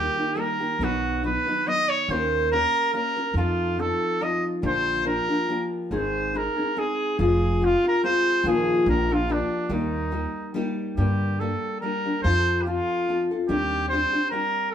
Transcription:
Already playing: D#3 G3 A#3 D#4 G4
0.17 A#3 D#4 G4
0.35 G3 A#3 D#4 G4
0.40 A#4
0.60 A#3 D#4 G4
0.79 B1 B2 D#3 F#3 B3 D#4 B4
0.84 F#4
1.23 F#3 B3 D#4 B4
1.46 F#3 B3 D#4 B4
1.66 F#3 B3 D#4 B4 D#5
1.89 C#5
2.08 D#2 D#3 A#3 C#4 G4 A#4 C5
2.52 A#3 C#4 G4 A#4
2.94 A#3 C#4 G4 A#4
3.16 C#4 G4 A#4
3.34 F2 F3 C4 D#4 F4 A4
3.79 F3 C4 D#4 A4
4.21 F3 C4 D#4 A4 D#5
4.62 A#1 A#2 D3 F3 A#3 D4 G4
4.66 C5
5.04 F3 A#3 D4 G4 A#4
5.28 F3 A#3 D4 G4
5.48 F3 A#3 D4 G4
5.91 G#1 G#2 D#3 G#3 C4 D#4 G#4 C5
6.34 G#3 C4 D#4 G#4 A#4
6.57 G#3 C4 D#4 G#4
6.76 G#3 C4 D#4 G#4
7.19 F1 F3 G#3 C4 F4 G#4
7.61 G#3 C4 F4 G4
7.84 C4 F4 G4
7.88 A#4
8.03 G#3 C4 F4 G4 C5
8.44 A#1 A#2 D#3 F3 A#3 F4 G#4
8.86 A#1 F3 A#3 D4 G4 A#4
9.10 F3 A#3 D4 F4 G4
9.28 F3 A#3 D4 G4
9.32 D4
9.69 D#2 D#3 G3 A#3 D#4 G4
9.74 D#4
10.11 G3 A#3 D#4 G4
10.54 G3 A#3 D#4 G4
10.97 G2 D3 G3 A#3 D4 G4
11.39 G3 A#3 D4 G4 A4
11.81 G3 A#3 D4 G4 A#4
12.05 G3 A#3 D4 G4
12.22 F2 F3 C4 F4 A4 C5
12.62 F4 G4
12.66 F3 C4 F4 A4
13.08 F3 C4 F4 A4
13.31 C4 F4 A4
13.48 D#2 D#3 G3 C4 D4 G4
13.89 G3 C4 D4 C5
13.93 G4
14.13 C4 D4 G4
14.30 G3 C4 D4 G4 A#4
14.72 A4

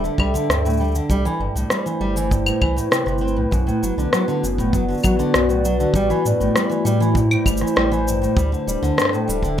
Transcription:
Already playing: D4 A4 E5 G5
0.04 D3, cabasa
0.18 C2 G3, kick, cross-stick, claves
0.34 D3, cabasa
0.49 D2 G2, cross-stick, cabasa
0.65 A2, cabasa
0.70 cabasa
0.77 G3, cabasa
0.81 cabasa
0.84 cabasa
0.88 cabasa
0.91 D3, cabasa
0.95 cabasa
1.10 C2 G3 A3, kick, cabasa
1.25 E3 E4, cabasa
1.34 C5
1.39 G1 G2
1.55 C2 A2, cabasa
1.61 B4
1.70 G3, cross-stick, cabasa
1.86 E3, cabasa
2.00 G1 G3
2.16 E3, cabasa
2.31 G2, kick, cabasa
2.46 A2, cabasa, claves
2.61 C2 E3, kick, claves
2.76 A2, cabasa
2.91 C3, cross-stick, cabasa
3.06 G1 C3, cross-stick, cabasa
3.18 C4, cabasa
3.28 cabasa
3.36 C2 A2
3.51 B1 F#2 B3, kick, cabasa
3.67 A2 F#4, cabasa
3.83 F#1 F#3, cabasa
3.97 B1 D3, cabasa
4.13 F#3, cross-stick, cabasa
4.28 D3, cabasa
4.43 F#1 F#2 D5, cabasa
4.58 A2, kick, cabasa
4.73 F#3, kick, cabasa
4.88 D3, cabasa
4.92 cabasa
4.94 cabasa
4.97 cabasa
5.00 cabasa
5.02 A1 F#3, kick, cabasa, claves
5.04 cabasa
5.19 D3, cabasa
5.34 B1 F#2, cross-stick, cabasa
5.49 A2, cabasa
5.65 F#3, cabasa
5.80 D3, cabasa
5.94 A1 G3 A3, kick, cabasa
6.04 E4
6.10 E3, cabasa
6.25 G2 A2, cabasa
6.40 A1 A2, cabasa
6.56 G3, cross-stick, cabasa
6.70 E3, cabasa
6.85 A2 G3 C5, cabasa
7.00 E3, cabasa
7.15 G2, kick, cabasa
7.31 A2, cabasa, claves
7.45 G1 G3, kick, cabasa, claves
7.57 cabasa
7.61 E3, cross-stick
7.67 cabasa
7.76 A1 G3, cross-stick
7.92 E3, cabasa
8.07 G2, cabasa
8.22 A2, cabasa
8.36 D2 G3 D4, kick, cabasa
8.52 D3, cabasa
8.64 D1 G3 A4
8.69 cabasa
8.74 G5
8.82 D2 D3 E5, cabasa
8.98 G2, cross-stick, cabasa
9.02 cross-stick
9.05 cross-stick
9.09 A2, cross-stick
9.14 cabasa
9.28 D1 G3, cabasa
9.43 D3, kick, cabasa

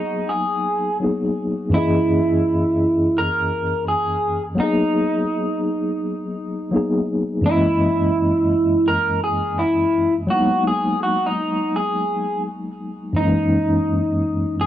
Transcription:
Already playing: F#3 A#3 B3 D#4 G#4
0.29 G#4
1.00 F#3 A#3 B3 D#4
1.04 G#4
1.69 F#2 E3 A#3
1.74 C#4 E4 G#4 D#5
3.18 A#4
3.88 G#4
4.55 F#3 A#3 B3
4.60 D#4 G#4
6.71 F#3 A#3 B3 D#4
6.76 G#4
7.42 F#2 E3 G#3
7.46 A#3 C#4 E4 D#5
8.88 A#4
9.24 G#4
9.59 E4
10.27 F#3 G#3 A#3 F#4
10.33 B3 D#4
10.68 G#4
11.03 F#4
11.26 D#4
11.76 G#4
13.13 F#2 E3 G#3 D#4
13.18 A#3 C#4 D#4
14.61 G#4

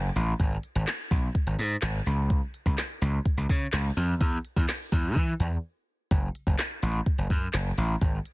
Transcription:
0.16 A1, closed hi-hat
0.40 G#1, kick, closed hi-hat
0.63 closed hi-hat
0.75 G#1
0.87 snare, clap, closed hi-hat
1.11 B1, kick, closed hi-hat
1.35 kick, closed hi-hat
1.47 G#1
1.59 G#2, closed hi-hat
1.82 G#1, snare, clap, closed hi-hat
2.06 C#2, closed hi-hat
2.30 kick, closed hi-hat
2.54 closed hi-hat
2.66 C#2, kick
2.78 snare, clap, closed hi-hat
3.02 C#2, closed hi-hat
3.26 kick, closed hi-hat
3.37 C#2
3.49 C#3, kick, closed hi-hat
3.73 C#2, snare, clap, closed hi-hat
3.97 F2, closed hi-hat
4.21 E2, kick, closed hi-hat
4.45 closed hi-hat
4.56 E2, kick
4.68 snare, clap, closed hi-hat
4.92 E2, kick, closed hi-hat
5.16 E3, kick, closed hi-hat
5.40 E2, closed hi-hat
6.11 F#1, kick, closed hi-hat
6.35 closed hi-hat
6.47 F#1, kick
6.59 snare, clap, closed hi-hat
6.83 A1, closed hi-hat
7.06 kick, closed hi-hat
7.18 F#1
7.30 F#2, kick, closed hi-hat
7.54 F#1, snare, clap, closed hi-hat
7.78 A1, closed hi-hat
8.01 G#1, kick, closed hi-hat
8.25 closed hi-hat

